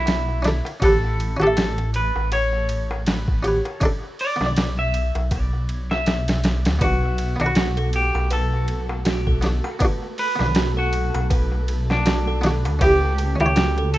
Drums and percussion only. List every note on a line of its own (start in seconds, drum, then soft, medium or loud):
0.06 snare loud
0.06 ride medium
0.06 darbuka tek medium
0.28 darbuka tek soft
0.44 snare medium
0.44 ride medium
0.65 ride soft
0.65 darbuka tek medium
0.82 kick loud
0.82 ride medium
0.82 darbuka tek medium
1.04 darbuka tek soft
1.20 ride medium
1.41 ride soft
1.41 darbuka tek medium
1.57 snare loud
1.57 ride medium
1.57 darbuka tek medium
1.78 ride soft
1.78 darbuka tek soft
1.94 ride medium
2.16 darbuka tek medium
2.32 ride medium
2.32 darbuka tek medium
2.53 darbuka tek soft
2.69 ride medium
2.91 darbuka tek medium
3.06 snare loud
3.06 ride medium
3.06 darbuka tek medium
3.28 kick loud
3.28 darbuka tek soft
3.44 ride medium
3.65 ride soft
3.65 darbuka tek medium
3.81 kick loud
3.81 ride medium
3.81 darbuka tek medium
4.04 darbuka tek soft
4.19 open hi-hat medium
4.41 snare soft
4.41 darbuka tek medium
4.56 snare loud
4.56 ride medium
4.56 darbuka tek medium
4.78 darbuka tek soft
4.94 ride medium
5.15 ride soft
5.15 darbuka tek medium
5.31 kick loud
5.31 ride medium
5.31 darbuka tek medium
5.53 darbuka tek soft
5.69 ride medium
5.91 snare medium
5.91 darbuka tek medium
6.06 snare loud
6.06 ride medium
6.06 darbuka tek medium
6.28 snare loud
6.28 ride medium
6.28 darbuka tek soft
6.44 snare loud
6.44 ride medium
6.65 snare medium
6.65 ride medium
6.65 darbuka tek medium
6.81 kick loud
6.81 ride medium
6.81 darbuka tek medium
7.03 darbuka tek soft
7.18 ride medium
7.40 ride soft
7.40 darbuka tek medium
7.55 snare loud
7.55 ride medium
7.55 darbuka tek medium
7.77 ride soft
7.77 darbuka tek soft
7.93 ride medium
8.15 darbuka tek medium
8.30 ride medium
8.30 darbuka tek medium
8.53 darbuka tek soft
8.68 ride medium
8.89 darbuka tek medium
9.05 snare loud
9.05 ride medium
9.05 darbuka tek medium
9.27 kick medium
9.27 darbuka tek soft
9.42 snare medium
9.42 ride medium
9.64 darbuka tek medium
9.80 kick loud
9.80 ride medium
9.80 darbuka tek medium
10.03 darbuka tek soft
10.18 open hi-hat medium
10.39 snare soft
10.39 darbuka tek medium
10.55 snare loud
10.55 ride medium
10.55 darbuka tek medium
10.77 darbuka tek soft
10.93 ride medium
11.15 ride soft
11.15 darbuka tek medium
11.30 kick loud
11.30 ride medium
11.30 darbuka tek medium
11.52 darbuka tek soft
11.68 ride medium
11.90 snare medium
11.90 darbuka tek medium
12.06 snare loud
12.06 ride medium
12.06 darbuka tek medium
12.27 darbuka tek soft
12.43 snare soft
12.43 ride medium
12.65 ride soft
12.65 darbuka tek medium
12.81 kick loud
12.81 ride medium
12.81 darbuka tek medium
13.02 darbuka tek soft
13.18 ride medium
13.40 ride soft
13.40 darbuka tek medium
13.56 snare loud
13.56 ride medium
13.56 darbuka tek medium
13.77 ride soft
13.77 darbuka tek soft
13.94 ride medium